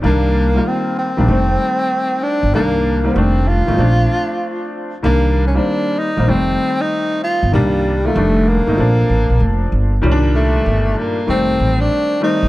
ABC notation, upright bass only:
X:1
M:4/4
L:1/16
Q:"Swing 16ths" 1/4=96
K:Cdor
V:1 name="Upright bass" clef=bass
C,,4 z3 B,,, F,,,2 z4 z G,,, | C,,4 F,,,3 G,,, B,,,2 z6 | C,,4 z3 B,,, F,,,2 z4 z G,,, | C,,4 F,,,3 G,,, B,,,2 A,,, B,,, F,,,2 G,,,2 |
C,,4 G,,,2 z2 F,,,2 A,,,2 z3 G,,, |]